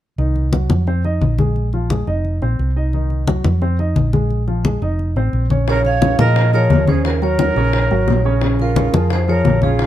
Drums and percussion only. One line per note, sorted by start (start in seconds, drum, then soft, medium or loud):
0.18 high conga soft
0.36 high conga soft
0.53 high conga medium
0.70 high conga medium
0.87 high conga soft
1.04 high conga soft
1.21 high conga medium
1.38 high conga medium
1.56 high conga soft
1.73 high conga soft
1.90 high conga medium
2.07 high conga soft
2.25 high conga soft
2.42 high conga soft
2.59 high conga soft
2.93 high conga soft
3.10 high conga soft
3.27 high conga medium
3.44 high conga medium
3.62 high conga soft
3.79 high conga soft
3.96 high conga medium
4.13 high conga medium
4.30 high conga soft
4.48 high conga soft
4.65 high conga medium
4.82 high conga soft
4.99 high conga soft
5.16 high conga soft
5.33 high conga soft
5.50 high conga medium
5.68 high bongo medium
5.68 high conga soft
5.85 high bongo soft
5.85 high conga soft
6.02 high bongo medium
6.02 high conga medium
6.19 high bongo soft
6.19 high conga medium
6.36 high bongo medium
6.36 high conga soft
6.53 high conga soft
6.70 high bongo soft
6.70 low bongo medium
6.70 high conga medium
6.87 high bongo soft
6.87 high conga medium
7.05 high bongo medium
7.05 high conga soft
7.22 high bongo soft
7.22 high conga soft
7.39 high bongo medium
7.39 high conga medium
7.56 high bongo soft
7.56 high conga soft
7.73 high bongo medium
7.73 high conga soft
7.91 high conga soft
8.08 high bongo soft
8.08 low bongo medium
8.08 high conga soft
8.25 high bongo soft
8.41 high bongo medium
8.41 high conga soft
8.59 high bongo soft
8.59 high conga soft
8.76 high bongo medium
8.76 high conga medium
8.93 high bongo soft
8.93 high conga medium
9.10 high bongo medium
9.10 high conga soft
9.28 high conga soft
9.45 high bongo soft
9.45 low bongo medium
9.45 high conga medium
9.62 high bongo soft
9.62 high conga medium
9.79 high bongo medium
9.79 high conga soft